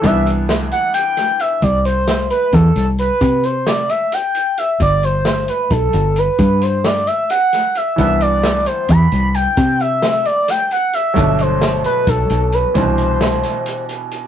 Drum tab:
HH |xxxxxxx|xxxxxxx|xxxxxxx|xxxxxxx|
SD |--o--o-|--o----|--o----|--o----|
BD |o------|o---o--|o------|o---o--|

HH |xxxxxxx|xxxxxxx|xxxxxxx|xxxxxxx|
SD |--o--o-|--o----|--o-o--|--o----|
BD |o------|o---o--|o------|o---o--|

HH |xxxxxxx|
SD |--oo---|
BD |o------|